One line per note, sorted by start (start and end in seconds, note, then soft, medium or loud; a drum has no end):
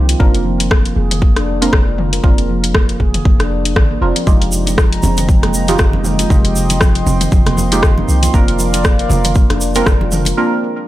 0.00 0.15 C2 medium
0.00 0.17 G#3 loud
0.00 0.17 A#3 medium
0.00 0.17 D#4 medium
0.00 0.17 F4 medium
0.00 0.17 G4 loud
0.09 0.15 F4 medium
0.09 closed hi-hat medium
0.20 0.92 F1 medium
0.20 1.58 A#3 medium
0.20 0.28 A#3 medium
0.20 1.58 C4 medium
0.20 1.58 D4 medium
0.20 1.58 F4 medium
0.20 1.58 A#4 loud
0.20 kick loud
0.34 closed hi-hat soft
0.45 0.59 F3 medium
0.60 closed hi-hat medium
0.71 kick loud
0.71 cross-stick loud
0.85 closed hi-hat soft
0.96 1.68 F1 loud
0.96 1.10 G#4 medium
1.11 closed hi-hat medium
1.11 mid tom medium
1.22 1.35 A#3 medium
1.22 kick loud
1.36 1.46 D4 loud
1.36 cross-stick medium
1.36 closed hi-hat soft
1.61 1.68 G#3 medium
1.61 2.21 A#3 loud
1.61 2.21 C4 medium
1.61 2.21 D4 medium
1.61 2.21 F4 medium
1.61 2.21 A#4 loud
1.61 closed hi-hat medium
1.73 2.19 F1 medium
1.73 kick loud
1.73 cross-stick loud
1.87 1.97 F4 medium
1.98 mid tom medium
2.13 2.19 A#4 medium
2.13 closed hi-hat medium
2.23 2.96 F1 medium
2.23 3.62 A#3 medium
2.23 2.32 A#3 medium
2.23 3.62 C4 medium
2.23 3.62 D4 medium
2.23 3.62 F4 medium
2.23 3.62 A#4 loud
2.23 kick loud
2.38 closed hi-hat soft
2.49 2.62 F3 medium
2.64 closed hi-hat medium
2.75 2.88 A#3 medium
2.75 kick loud
2.75 cross-stick loud
2.89 closed hi-hat soft
3.00 3.20 F1 loud
3.00 3.13 G#4 medium
3.00 kick medium
3.14 closed hi-hat medium
3.14 mid tom medium
3.25 3.75 F1 loud
3.25 3.38 A#3 medium
3.25 kick loud
3.39 3.49 D4 loud
3.39 cross-stick medium
3.39 closed hi-hat soft
3.65 3.76 D4 medium
3.65 closed hi-hat medium
3.76 3.96 G#1 loud
3.76 kick loud
3.76 cross-stick loud
3.76 mid tom medium
3.91 4.01 A#3 medium
4.01 4.12 F1 medium
4.01 4.15 A#3 medium
4.01 4.15 C4 medium
4.01 4.15 D4 medium
4.01 4.15 F4 medium
4.01 4.15 A#4 loud
4.16 4.26 F3 medium
4.16 closed hi-hat medium
4.27 4.99 F1 medium
4.27 4.35 F3 medium
4.27 5.65 G#3 medium
4.27 8.30 G#3 medium
4.27 5.65 A#3 medium
4.27 5.65 D#4 medium
4.27 5.65 F4 medium
4.27 5.65 G4 loud
4.27 8.30 D#5 medium
4.27 8.30 G5 medium
4.27 6.28 A#5 loud
4.27 kick loud
4.27 shaker soft
4.42 closed hi-hat soft
4.52 4.65 C3 medium
4.52 shaker medium
4.67 closed hi-hat medium
4.67 muted conga soft
4.67 shaker medium
4.77 4.91 F3 medium
4.77 kick loud
4.77 cross-stick loud
4.77 shaker soft
4.93 closed hi-hat soft
5.03 5.75 F1 loud
5.03 5.11 C4 medium
5.03 muted conga soft
5.03 high conga loud
5.03 low conga medium
5.03 shaker medium
5.17 closed hi-hat medium
5.17 mid tom medium
5.17 shaker medium
5.28 5.42 F3 medium
5.28 kick loud
5.28 shaker soft
5.43 5.53 A#3 medium
5.43 cross-stick medium
5.43 closed hi-hat soft
5.43 muted conga soft
5.43 high conga medium
5.54 shaker medium
5.68 5.74 D#3 medium
5.68 6.28 G#3 loud
5.68 6.28 A#3 medium
5.68 6.28 D#4 medium
5.68 6.28 F4 medium
5.68 6.28 G4 loud
5.68 closed hi-hat medium
5.68 high conga medium
5.68 shaker medium
5.78 6.26 F1 medium
5.78 kick loud
5.78 cross-stick loud
5.78 muted conga soft
5.78 high conga medium
5.78 shaker soft
5.93 6.04 C4 medium
5.93 high conga loud
6.05 mid tom medium
6.05 high conga medium
6.05 shaker medium
6.19 6.25 F4 medium
6.19 closed hi-hat medium
6.19 muted conga medium
6.19 shaker soft
6.30 7.02 F1 loud
6.30 6.38 F3 medium
6.30 7.68 G#3 medium
6.30 7.68 A#3 medium
6.30 7.68 D#4 medium
6.30 7.68 F4 medium
6.30 7.68 G4 loud
6.30 10.33 C6 medium
6.30 kick loud
6.30 low conga medium
6.30 shaker soft
6.45 closed hi-hat soft
6.56 6.69 C3 medium
6.56 shaker medium
6.70 closed hi-hat medium
6.70 muted conga medium
6.70 shaker medium
6.81 6.95 F3 medium
6.81 kick loud
6.81 cross-stick loud
6.81 shaker soft
6.95 closed hi-hat soft
7.06 7.27 F1 loud
7.06 7.14 C4 medium
7.06 high conga medium
7.06 low conga medium
7.06 shaker medium
7.21 closed hi-hat medium
7.21 mid tom medium
7.21 shaker soft
7.32 8.04 F1 loud
7.32 7.45 F3 medium
7.32 kick loud
7.32 high conga loud
7.32 shaker soft
7.46 7.57 A#3 loud
7.46 cross-stick medium
7.46 closed hi-hat soft
7.46 muted conga soft
7.46 low conga medium
7.57 high conga medium
7.57 shaker medium
7.72 7.78 D#3 medium
7.72 8.31 G#3 loud
7.72 8.31 A#3 medium
7.72 8.31 D#4 medium
7.72 8.31 F4 medium
7.72 8.31 G4 loud
7.72 closed hi-hat medium
7.72 shaker soft
7.83 kick loud
7.83 cross-stick loud
7.83 mid tom medium
7.83 muted conga soft
7.83 shaker soft
7.98 8.07 C4 medium
7.98 high conga loud
8.08 8.28 C2 medium
8.08 shaker medium
8.23 8.29 F4 medium
8.23 closed hi-hat medium
8.23 muted conga medium
8.23 high conga medium
8.23 shaker medium
8.34 9.06 F1 medium
8.34 9.72 A#3 medium
8.34 8.42 A#3 medium
8.34 9.72 C4 medium
8.34 9.72 D4 medium
8.34 9.72 F4 medium
8.34 9.72 A#4 loud
8.34 10.35 A#4 medium
8.34 10.35 D5 medium
8.34 10.35 F5 medium
8.34 kick loud
8.34 shaker soft
8.48 closed hi-hat soft
8.59 8.72 F3 medium
8.59 shaker medium
8.74 closed hi-hat medium
8.74 muted conga soft
8.74 shaker soft
8.84 kick loud
8.84 cross-stick loud
8.84 shaker soft
8.99 closed hi-hat soft
9.09 9.82 F1 loud
9.09 9.18 F4 medium
9.09 muted conga soft
9.09 high conga loud
9.09 low conga medium
9.09 shaker medium
9.24 closed hi-hat medium
9.24 mid tom medium
9.24 shaker soft
9.35 9.49 A#3 medium
9.35 kick loud
9.35 shaker soft
9.50 9.60 D4 loud
9.50 cross-stick medium
9.50 closed hi-hat soft
9.50 muted conga soft
9.50 high conga loud
9.61 shaker medium
9.75 9.81 G#3 medium
9.75 10.35 A#3 loud
9.75 10.35 C4 medium
9.75 10.35 D4 medium
9.75 10.35 F4 medium
9.75 10.35 A#4 loud
9.75 closed hi-hat medium
9.75 high conga medium
9.75 shaker soft
9.86 10.33 F1 medium
9.86 kick loud
9.86 cross-stick loud
9.86 muted conga soft
9.86 high conga medium
9.86 shaker soft
10.01 10.11 F4 medium
10.01 high conga medium
10.12 mid tom loud
10.12 high conga medium
10.12 shaker medium
10.25 10.32 A#4 medium
10.25 closed hi-hat medium
10.25 muted conga medium
10.25 shaker medium
10.37 10.88 A#3 medium
10.37 10.88 C4 medium
10.37 10.88 D4 medium
10.37 10.88 F4 medium
10.37 10.88 A#4 loud